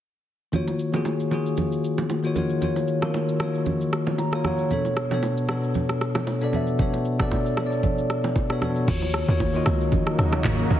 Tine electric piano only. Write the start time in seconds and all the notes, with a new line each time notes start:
0.52 D#3 A#3 F4 F#4 C#5
0.92 D#3 A#3 F4 F#4 G#4
1.30 D#3 A#3 F4 F#4 G#4
2.23 D#3 A#3 F4 F#4 C#5
2.35 D#3 A#3 F4 F#4 C#5
2.61 D#3 A#3 F4 F#4 C#5
3.01 D#3 A#3 F4 F#4 A#4
3.39 D#3 A#3 F4 F#4 C#5
4.19 A#5
4.32 D#3 A#3 F4 F#4 C#5
4.43 D#3 A#3 F4 F#4 C#5 F#5
4.70 B2 B3 D4 A4 C#5
5.10 B2 B3 D4 A4 C#5
5.48 B2 B3 D4 A4 C#5
6.40 B2 B3 D4 A4 D5
6.52 B2 B3 D4 A4 E5
6.78 B2 B3 D4 A4 C#5
7.19 B2 B3 D4 A4 D5
7.56 B2 B3 D4 A4 C#5
7.66 D5
8.49 B2 B3 D4 A4 C#5
8.61 B2 B3 D4 A4 C#5
8.87 D#3 A#3 F4 F#4 C#5
9.27 D#3 A#3 F4 F#4 C#5
9.53 D#3 A#3 F4 F#4 D#5